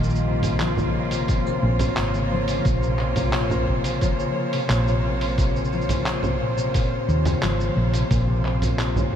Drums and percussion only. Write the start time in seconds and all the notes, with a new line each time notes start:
0.03 cabasa
0.09 cabasa
0.15 cabasa
0.43 open hi-hat, low conga, cabasa
0.60 clap, open hi-hat, cabasa
0.77 low conga, cabasa
1.11 open hi-hat, cabasa
1.28 kick, open hi-hat, cabasa
1.47 cabasa
1.79 open hi-hat, low conga, cabasa
1.97 clap, open hi-hat, cabasa
2.14 cabasa
2.48 open hi-hat, cabasa
2.65 kick, open hi-hat, cabasa
2.83 cabasa
2.99 clap
3.16 open hi-hat, low conga, cabasa
3.33 clap, open hi-hat
3.50 low conga, cabasa
3.68 kick
3.84 open hi-hat, cabasa
4.01 kick, open hi-hat, cabasa
4.19 cabasa
4.53 open hi-hat
4.70 clap, open hi-hat, cabasa
4.88 cabasa
5.21 open hi-hat
5.38 kick, open hi-hat, cabasa
5.56 cabasa
5.64 cabasa
5.73 cabasa
5.81 cabasa
5.89 open hi-hat, low conga, cabasa
6.06 clap, open hi-hat, cabasa
6.23 low conga, cabasa
6.58 cabasa
6.74 kick, open hi-hat, cabasa
7.09 cabasa
7.25 open hi-hat, low conga, cabasa
7.43 clap, open hi-hat, cabasa
7.60 cabasa
7.94 open hi-hat, cabasa
8.11 kick, open hi-hat, cabasa
8.45 clap
8.62 open hi-hat, low conga, cabasa
8.79 clap, open hi-hat, cabasa
8.96 low conga, cabasa